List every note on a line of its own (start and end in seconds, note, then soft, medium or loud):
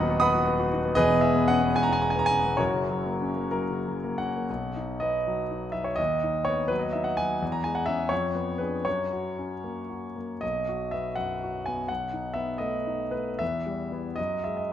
0.00 0.92 D#1 medium
0.00 0.93 D#2 medium
0.00 0.98 D#3 medium
0.00 0.99 F#3 medium
0.00 0.85 B3 medium
0.00 0.18 D#4 medium
0.00 0.18 D#5 loud
0.00 0.18 F#5 loud
0.00 0.20 B5 loud
0.10 0.29 F#4 medium
0.20 0.41 B4 medium
0.20 0.67 F#5 medium
0.20 0.67 B5 medium
0.20 0.70 D#6 loud
0.34 0.54 F#4 medium
0.47 0.66 B4 medium
0.60 0.79 F#4 medium
0.73 0.92 D#4 medium
0.85 0.97 B3 medium
0.95 2.54 E1 medium
0.95 2.55 E2 medium
0.95 1.21 G#4 medium
0.95 1.21 B4 medium
0.95 1.22 D#5 loud
1.11 1.31 B2 medium
1.21 1.44 G#3 medium
1.21 1.48 E5 medium
1.36 1.57 B3 medium
1.48 1.70 C#4 medium
1.48 1.75 F#5 loud
1.63 1.84 B3 medium
1.76 1.97 G#3 medium
1.76 1.84 G#5 loud
1.83 1.92 A#5 loud
1.89 2.10 B2 soft
1.89 2.01 G#5 loud
2.02 2.24 G#3 soft
2.02 2.10 A#5 medium
2.10 2.19 G#5 medium
2.15 2.38 B3 medium
2.15 2.28 A#5 medium
2.26 2.57 G#5 loud
2.31 2.53 C#4 soft
2.45 2.59 B3 soft
2.57 4.44 F#1 medium
2.57 4.45 F#2 medium
2.57 4.14 F#4 medium
2.57 3.50 A#4 medium
2.57 4.18 C#5 medium
2.74 2.98 C#3 soft
2.90 3.13 F#3 soft
3.06 3.29 A#3 soft
3.22 3.45 C#4 soft
3.37 3.62 A#3 soft
3.51 3.79 F#3 soft
3.51 4.19 A#4 medium
3.70 3.96 C#3 soft
3.87 4.13 F#3 soft
4.04 4.29 A#3 soft
4.18 4.44 C#4 soft
4.18 5.00 F#5 medium
4.37 4.49 A#3 soft
4.50 5.96 B1 medium
4.76 5.16 D#4 soft
5.00 5.40 B3 soft
5.00 5.74 D#5 medium
5.27 5.65 F#3 soft
5.51 5.89 D#4 soft
5.72 5.99 F#3 soft
5.72 5.85 E5 medium
5.84 5.98 C#5 medium
5.96 7.37 D#2 medium
5.96 6.45 D#5 medium
6.23 6.61 D#4 soft
6.45 6.85 B3 soft
6.45 6.69 C#5 medium
6.68 7.08 F#3 medium
6.68 6.81 B4 medium
6.79 6.92 D#5 medium
6.92 7.32 D#4 soft
6.92 7.05 E5 medium
7.04 7.17 F#5 medium
7.17 7.42 F#3 soft
7.17 7.53 G#5 medium
7.42 8.09 E2 medium
7.52 7.64 A#5 medium
7.64 8.02 G#3 soft
7.64 7.76 G#5 medium
7.75 7.87 F#5 medium
7.86 8.09 C#4 soft
7.86 8.09 G#4 medium
7.86 8.10 E5 medium
8.09 8.84 F2 medium
8.09 8.59 C#5 medium
8.35 8.76 B3 soft
8.58 8.83 D4 soft
8.58 8.84 G#4 soft
8.58 8.85 B4 medium
8.85 10.38 F#2 medium
8.85 10.15 C#5 medium
9.12 9.53 F#4 soft
9.38 9.79 C#4 soft
9.64 10.06 A#3 soft
9.90 10.32 F#4 soft
10.16 10.42 A#3 soft
10.41 11.85 B1 soft
10.41 10.91 D#5 medium
10.69 11.08 F#4 soft
10.91 11.33 B3 soft
10.91 11.17 E5 medium
11.15 11.57 F#2 soft
11.15 11.65 F#5 medium
11.43 11.81 F#4 soft
11.66 11.90 B3 soft
11.66 11.89 G#5 medium
11.88 13.38 B1 soft
11.88 12.35 F#5 medium
12.13 12.50 D#4 soft
12.34 12.75 B3 soft
12.34 12.59 E5 medium
12.58 13.02 A3 soft
12.58 13.13 D#5 medium
12.86 13.31 D#4 soft
13.11 13.41 A3 soft
13.11 13.40 B4 medium
13.39 14.15 E2 medium
13.39 14.16 E5 medium
13.66 14.07 G3 soft
13.91 14.15 B3 soft
13.91 14.16 E4 soft
14.16 14.73 F#2 medium
14.16 14.44 D#5 medium
14.44 14.73 G#3 soft
14.44 14.59 E5 medium
14.57 14.73 D#5 medium